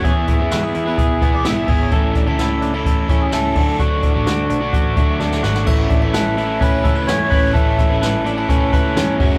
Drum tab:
CC |----------------|----------------|----------------|x---------------|
HH |x-x-x-x-x-x-x-o-|x-x-x-x-x-x-x-o-|x-x-x-x-x-x-----|--x-x-x-x-x-x-o-|
SD |--o-o-------o---|--o-o-------o---|----o-------oooo|----o-------o---|
BD |o-o-----o-o---o-|o-o-----o-o---o-|o-o-----o-o-----|o-o-----o-o---o-|

CC |----------------|
HH |x-x-x-x-x-x-x-o-|
SD |--o-o-------o---|
BD |o-o-----o-o---o-|